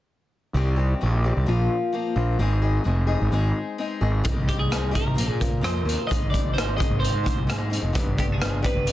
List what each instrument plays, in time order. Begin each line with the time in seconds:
0.54 picked electric bass C2, steel-string acoustic guitar C3 D#3 G3 C4 G4
0.76 steel-string acoustic guitar G3 C4 G4
1.01 picked electric bass A#1, steel-string acoustic guitar D#3 G3 C4 G4
1.24 steel-string acoustic guitar G3 C4 G4
1.37 picked electric bass C2
1.46 picked electric bass A#1, steel-string acoustic guitar A#2 F3 A#3 C4 F4
1.92 steel-string acoustic guitar F3 A#3 C4 F4
2.16 picked electric bass A#1, steel-string acoustic guitar A#3 C4 F4
2.39 picked electric bass G#1, steel-string acoustic guitar G#3 C4 D#4 G#4
2.62 steel-string acoustic guitar C4 D#4 G#4
2.84 picked electric bass F1, steel-string acoustic guitar G#3 C4 D#4 G#4
3.07 steel-string acoustic guitar C4 D#4 G#4
3.21 picked electric bass G#1
3.32 picked electric bass G#1, steel-string acoustic guitar G#3 C4 D#4 G#4
3.78 steel-string acoustic guitar G#3 C4 D#4 G#4
4.01 picked electric bass G#1, steel-string acoustic guitar C4 D#4 G#4
4.24 picked electric bass C2, steel-string acoustic guitar C3 G3 C4 D#4 G4, kick, closed hi-hat
4.48 steel-string acoustic guitar C4 D#4, clean electric guitar G4, kick, closed hi-hat
4.59 clean electric guitar G#4
4.70 steel-string acoustic guitar G3 C4 D#4 G4, cross-stick, closed hi-hat
4.91 steel-string acoustic guitar C3 G3 C4 D#4 G4
4.95 clean electric guitar A#4, kick, closed hi-hat
5.06 picked electric bass C2
5.15 picked electric bass A#1, steel-string acoustic guitar A#3 C4 F4 A#4, closed hi-hat
5.29 picked electric bass A#2
5.40 steel-string acoustic guitar C4 F4 A#4, kick, closed hi-hat
5.61 picked electric bass F2, steel-string acoustic guitar A#3 C4 F4 A#4, clean electric guitar C5, cross-stick, closed hi-hat
5.85 picked electric bass D#2, steel-string acoustic guitar C4 F4 A#4
5.89 closed hi-hat
6.07 steel-string acoustic guitar G#2 D#3 G#3 C4 D#4 G#4, clean electric guitar D#5, kick
6.12 picked electric bass G#1, closed hi-hat
6.30 steel-string acoustic guitar G#3 C4 D#4 G#4, clean electric guitar D5, kick
6.35 closed hi-hat
6.54 steel-string acoustic guitar G#3 C4 D#4 G#4, clean electric guitar C5
6.58 cross-stick, closed hi-hat
6.77 steel-string acoustic guitar G#2 D#3 G#3 C4 D#4 G#4, clean electric guitar D#5, kick
6.81 closed hi-hat
6.90 picked electric bass G#1
7.00 steel-string acoustic guitar G#3 C4 D#4 G#4, clean electric guitar C5
7.04 closed hi-hat
7.14 picked electric bass G#2
7.23 steel-string acoustic guitar G#3 C4 D#4 G#4, kick
7.27 closed hi-hat
7.37 picked electric bass C2
7.47 steel-string acoustic guitar G#2 D#3 G#3 C4 D#4 G#4, picked electric bass G#2, cross-stick, closed hi-hat
7.70 steel-string acoustic guitar G#3 C4 D#4 G#4, closed hi-hat
7.82 picked electric bass F1
7.93 picked electric bass G1, steel-string acoustic guitar G2 D3 G3 B3 D4 G4, kick, closed hi-hat
8.17 steel-string acoustic guitar B3 D4, clean electric guitar G4, kick, closed hi-hat
8.32 clean electric guitar G#4
8.40 steel-string acoustic guitar G3 B3 D4 G4, cross-stick, closed hi-hat
8.62 steel-string acoustic guitar G2 D3 G3 B3 D4 G4, clean electric guitar B4, kick, closed hi-hat
8.75 picked electric bass G1
8.86 steel-string acoustic guitar G3 B3 D4 G4, closed hi-hat